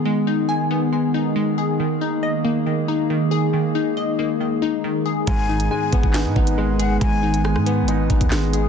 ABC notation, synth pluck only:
X:1
M:4/4
L:1/8
Q:1/4=138
K:G#m
V:1 name="Synth pluck"
[G,B,DG] D g B, G, D G, G | D, D d A, D, D D, G | D, D d A, D, D D, G | G, D g B, G, D G, G |
G, D g B, G, D G, G |]